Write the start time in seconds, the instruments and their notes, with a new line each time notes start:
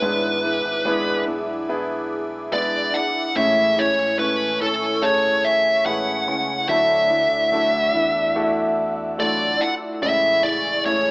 Already playing: lead electric guitar B4
0.01 fingered electric bass G#1, grand piano G#2 B3 D4 E4 G#4 B4, nylon-string guitar G#3 B3 D4 E4, analog synth pad G#4 E5 D6
0.43 nylon-string guitar B3 D4 E4
0.65 fingered electric bass G#1
0.84 nylon-string guitar G#3 B3 D4 E4, grand piano B3 D4 E4 G#4 B4
1.26 fingered electric bass B1, nylon-string guitar B3 D4 E4
1.69 grand piano B3 D4 E4 G#4 B4
2.51 nylon-string guitar G#3 B3 D4 E4, grand piano B3 D4 E4 G#4 B4, lead electric guitar D5
2.93 nylon-string guitar B3 D4 E4, lead electric guitar F#5
3.35 fingered electric bass A1, nylon-string guitar A2 E3 G#3 C#4 E4, grand piano A2 A3 C#4 E4 G#4 C#5, analog synth pad C#5 G#5 C#6, lead electric guitar E5
3.76 nylon-string guitar G#3 C#4 E4, lead electric guitar C#5
3.99 fingered electric bass A1
4.18 nylon-string guitar E3 G#3 C#4 E4, grand piano A3 C#4 E4 C#5, lead electric guitar B4
4.60 fingered electric bass G#1, nylon-string guitar C#4 E4, lead electric guitar A4
5.02 grand piano A3 C#4 E4 G#4 A4, lead electric guitar C#5
5.45 lead electric guitar E5
5.85 fingered electric bass A1, nylon-string guitar E3 G#3 C#4 E4, grand piano A3 C#4 E4 G#4 B4, lead electric guitar F#5
6.26 fingered electric bass C#2, nylon-string guitar G#3 C#4 E4
6.68 fingered electric bass D2, nylon-string guitar D3 F#3 A3 D4 E4, grand piano D3 A3 D4 E4 F#4 A4, analog synth pad D5 F#5 E6, lead electric guitar E5
7.09 nylon-string guitar A3 D4 E4
7.31 fingered electric bass D2
7.52 nylon-string guitar F#3 A3 D4 E4, grand piano A3 D4 E4 F#4 A4
7.93 fingered electric bass E2, nylon-string guitar A3 D4 E4
8.35 grand piano A3 D4 E4 F#4 A4
9.18 nylon-string guitar F#3 A3 D4 E4, grand piano A3 D4 E4 F4 A4, lead electric guitar D5
9.26 grand piano F#4
9.60 nylon-string guitar A3 D4 E4, lead electric guitar F#5
10.02 fingered electric bass A1, nylon-string guitar A2 E3 G#3 C#4 E4, grand piano A2 C#3 A3 E4 G#4, analog synth pad G#4 G#5 C#6, lead electric guitar E5
10.43 nylon-string guitar G#3 E4, lead electric guitar D5
10.65 fingered electric bass A1
10.85 nylon-string guitar E3 G#3 C#4 E4, grand piano A3 C#4 E4 G#4 C#5, lead electric guitar C#5